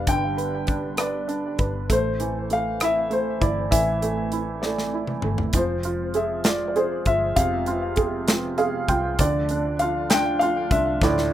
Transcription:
Already playing: analog synth pad G3 B3 D4, felt piano G3 D4 B4
0.07 fingered electric bass G1, felt piano D3, grand piano G5, kick, closed hi-hat
0.37 felt piano B4, closed hi-hat
0.67 felt piano D4, kick, closed hi-hat
0.97 felt piano B4, grand piano D5, cross-stick, closed hi-hat
1.28 felt piano D4, closed hi-hat
1.58 fingered electric bass G1, felt piano B4, kick, closed hi-hat
1.89 fingered electric bass A1, analog synth pad E3 A3 C4, felt piano A3, grand piano C5, kick, closed hi-hat
2.20 felt piano E3, closed hi-hat
2.50 felt piano A3, grand piano F5, closed hi-hat
2.80 felt piano E4, grand piano E5, cross-stick, closed hi-hat
3.10 felt piano A3, grand piano C5, closed hi-hat
3.41 fingered electric bass G1, felt piano E4, grand piano D5, kick, closed hi-hat
3.71 fingered electric bass A1, felt piano E3, grand piano E5, kick, closed hi-hat
4.02 felt piano A3, closed hi-hat
4.32 felt piano E4, closed hi-hat
4.62 felt piano A3, grand piano D5, snare
4.78 snare
4.94 felt piano E4
5.07 mid tom
5.22 fingered electric bass G1, felt piano A3, mid tom
5.38 floor tom
5.53 fingered electric bass F1, felt piano F3, analog synth pad F3 G#3, grand piano C5, kick, closed hi-hat
5.83 felt piano F4, closed hi-hat
6.14 felt piano G#4, grand piano E5, closed hi-hat
6.44 felt piano F4, grand piano D5, snare, closed hi-hat
6.68 grand piano D5
6.76 felt piano G#4, grand piano C5, closed hi-hat
7.06 fingered electric bass G1, felt piano F4, grand piano E5, kick, closed hi-hat
7.36 fingered electric bass F1, felt piano C3, analog synth pad B3, grand piano F5, kick, closed hi-hat
7.66 felt piano F4, closed hi-hat
7.96 felt piano G#4, kick, closed hi-hat
8.27 felt piano F4, snare, closed hi-hat
8.58 felt piano G#4 F5, closed hi-hat
8.88 fingered electric bass C2, felt piano F4 G5, kick, closed hi-hat
9.19 fingered electric bass D2, felt piano D3, analog synth pad F3 A3 D4, grand piano D5, kick, closed hi-hat
9.49 felt piano D4, closed hi-hat
9.79 felt piano F4, grand piano F5, closed hi-hat
10.10 felt piano D4, grand piano G5, snare, closed hi-hat
10.39 felt piano F4, grand piano F5, closed hi-hat
10.71 fingered electric bass C2, felt piano D4, grand piano E5, kick, closed hi-hat
11.01 fingered electric bass D2, felt piano A2, grand piano D5, kick, snare
11.18 snare

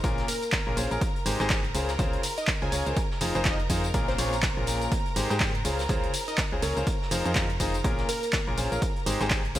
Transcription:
Already playing: string section A#4 A#5
0.04 fm bass A#1, grand piano A#2 C#4 F4 G#4 A#4, kick, closed hi-hat, tambourine
0.18 snare, closed hi-hat
0.28 digital synth lead A#4, closed hi-hat, open hi-hat, ride, tambourine
0.43 closed hi-hat, tambourine
0.52 kick, snare, clap, closed hi-hat, tambourine
0.67 fm bass A#1, grand piano A#2 C#4 F4 G#4 A#4
0.77 fm bass A#1, grand piano C#4 F4 G#4 C5, closed hi-hat, open hi-hat, ride, tambourine
0.91 fm bass A#1, grand piano C#4 F4 G#4 A#4, closed hi-hat, tambourine
1.01 kick, closed hi-hat, tambourine
1.16 closed hi-hat
1.26 fm bass G#1, grand piano G#3 D#4 G4 G#4 C5, closed hi-hat, open hi-hat, ride, tambourine
1.40 fm bass G#1, grand piano G#3 D#4 G4 G#4 C5, snare, closed hi-hat, tambourine
1.50 kick, snare, clap, closed hi-hat, tambourine
1.64 closed hi-hat
1.74 fm bass C#2, grand piano C#3 C#4 F4 G#4 C5, closed hi-hat, open hi-hat, ride, tambourine
1.88 snare, closed hi-hat, tambourine
1.99 fm bass C#2, grand piano C#3 C#4 F4 G#4 C5, kick, closed hi-hat, tambourine
2.13 closed hi-hat
2.23 closed hi-hat, open hi-hat, ride, tambourine
2.38 digital synth lead D#5, closed hi-hat, tambourine
2.47 kick, snare, clap, closed hi-hat, tambourine
2.62 fm bass C#2, grand piano C#3 C#4 F4 G#4 C5, digital synth lead G#5
2.72 fm bass C#2, grand piano C#4 F4 G#4 C#5, closed hi-hat, open hi-hat, ride, tambourine
2.86 fm bass C#2, grand piano C#4 F4 G#4 C5, closed hi-hat, tambourine
2.96 kick, closed hi-hat, tambourine
3.11 snare
3.21 fm bass F1, grand piano F3 D#4 F4 G#4 C5, closed hi-hat, open hi-hat, ride, tambourine
3.35 fm bass F1, grand piano F3 D#4 F4 G#4 C5, closed hi-hat, tambourine
3.45 digital synth lead D#5, kick, snare, clap, closed hi-hat, tambourine
3.60 closed hi-hat
3.70 fm bass F2, grand piano D#4 F4 G#4 C5, kick, closed hi-hat, open hi-hat, ride, tambourine
3.84 closed hi-hat, tambourine
3.94 fm bass A#1, grand piano A#2 C#4 F4 G#4 A#4, kick, closed hi-hat, tambourine
4.08 digital synth lead C5, snare, closed hi-hat
4.18 fm bass A#1, grand piano A#2 C#4 F4 G#4 C#5, closed hi-hat, open hi-hat, ride, tambourine
4.33 closed hi-hat, tambourine
4.43 kick, snare, clap, closed hi-hat, tambourine
4.57 fm bass A#1, grand piano A#2 C#4 F4 G#4 A#4
4.66 closed hi-hat, open hi-hat, ride, tambourine
4.82 closed hi-hat, tambourine
4.92 kick, closed hi-hat, tambourine
5.06 closed hi-hat
5.16 fm bass G#1, grand piano G#3 D#4 G4 G#4 C5, closed hi-hat, open hi-hat, ride, tambourine
5.30 fm bass G#2, grand piano G#3 D#4 G4 G#4 C5, snare, closed hi-hat, tambourine
5.40 kick, snare, clap, closed hi-hat, tambourine
5.55 closed hi-hat
5.65 fm bass C#2, grand piano C#3 C#4 F4 G#4 C5, closed hi-hat, open hi-hat, ride, tambourine
5.79 snare, closed hi-hat, tambourine
5.89 fm bass C#2, grand piano C#3 C#4 F4 G#4 C5, kick, closed hi-hat, tambourine
6.03 closed hi-hat
6.14 closed hi-hat, open hi-hat, ride, tambourine
6.28 digital synth lead D#5, closed hi-hat, tambourine
6.37 kick, snare, clap, closed hi-hat, tambourine
6.52 fm bass C#2, grand piano C#3 C#4 F4 G#4 C5
6.62 fm bass C#2, grand piano C#4 F4 G#4 C#5, digital synth lead A#4, closed hi-hat, open hi-hat, ride, tambourine
6.77 fm bass C#2, grand piano C#4 F4 G#4 C5, closed hi-hat, tambourine
6.87 kick, closed hi-hat, tambourine
7.02 snare
7.11 fm bass F1, grand piano F3 D#4 F4 G#4 C5, closed hi-hat, open hi-hat, ride, tambourine
7.25 fm bass F2, grand piano F3 D#4 F4 G#4 C5, closed hi-hat, tambourine
7.35 kick, snare, clap, closed hi-hat, tambourine
7.50 closed hi-hat
7.60 fm bass F1, grand piano D#4 F4 G#4 C5, kick, closed hi-hat, open hi-hat, ride, tambourine
7.74 closed hi-hat, tambourine
7.84 fm bass A#1, grand piano A#2 C#4 F4 G#4 A#4, kick, closed hi-hat, tambourine
7.98 snare, closed hi-hat
8.09 digital synth lead A#4, closed hi-hat, open hi-hat, ride, tambourine
8.23 closed hi-hat, tambourine
8.33 kick, snare, clap, closed hi-hat, tambourine
8.47 fm bass A#1, grand piano A#2 C#4 F4 G#4 A#4
8.57 fm bass A#1, grand piano C#4 F4 G#4 C5, closed hi-hat, open hi-hat, ride, tambourine
8.72 fm bass A#1, grand piano C#4 F4 G#4 A#4, closed hi-hat, tambourine
8.81 kick, closed hi-hat, tambourine
8.96 closed hi-hat
9.06 fm bass G#1, grand piano G#3 D#4 G4 G#4 C5, closed hi-hat, open hi-hat, ride, tambourine
9.21 fm bass G#1, grand piano G#3 D#4 G4 G#4 C5, snare, closed hi-hat, tambourine
9.30 kick, snare, clap, closed hi-hat, tambourine
9.45 closed hi-hat
9.55 fm bass C#2, grand piano C#3 C#4 F4 G#4 C5, closed hi-hat, open hi-hat, ride, tambourine

